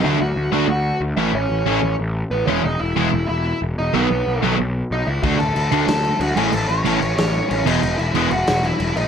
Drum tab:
CC |--------|--------|--------|--------|
SD |--------|--------|--------|--------|
BD |--------|--------|--------|--------|

CC |xxxxxxxx|xxxxxxxx|xxxxxxxx|
SD |----o---|----o---|----o---|
BD |o-------|--------|--------|